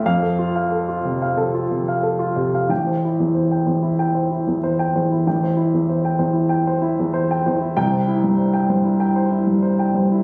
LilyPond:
<<
  \new Staff \with { instrumentName = "Upright piano" } { \time 4/4 \key a \minor \tempo 4 = 94 << { f''8 r2. r8 | g''8 r2. r8 | r1 | g''8 r2. r8 | } \\ { r16 a'16 f'16 f''16 a'16 f'16 c16 f''16 a'16 f'16 c16 f''16 a'16 f'16 c16 f''16 | r16 c''16 e'16 e,16 c''16 g''16 c''16 e'16 g''16 c''16 e'16 e,16 c''16 g''16 c''16 e'16 | g''16 c''16 e'16 e,16 c''16 g''16 c''16 e'16 g''16 c''16 e'16 e,16 c''16 g''16 c''16 e'16 | r16 c''16 e'16 g,16 c''16 g''16 c''16 e'16 g''16 c''16 e'16 g,16 c''16 g''16 c''16 e'16 | } >> }
  \new Staff \with { instrumentName = "Upright piano" } { \clef bass \time 4/4 \key a \minor f,2 c4 r4 | a,,4. e,4 r4 e,8 | a,,4. e,4 r4 e,8 | c,4. g,4 r4 g,8 | }
>>